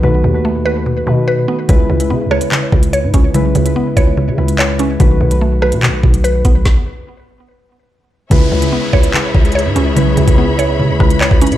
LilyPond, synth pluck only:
\new Staff \with { instrumentName = "Synth pluck" } { \time 4/4 \key cis \minor \tempo 4 = 145 <b, b b'>8 b,8 a8 b'8 b,8 b,8 b'8 b8 | cis8 cis8 b8 cis''8 cis8 cis8 cis''8 cis'8 | cis8 cis8 b8 cis''8 cis8 cis8 cis''8 cis'8 | b,8 b,8 a8 b'8 b,8 b,8 b'8 b8~ |
b2~ b8 r4. | cis8 cis8 b8 cis''8 cis8 cis8 cis''8 cis'8 | cis8 cis8 b8 cis''8 cis8 cis8 cis''8 cis'8 | }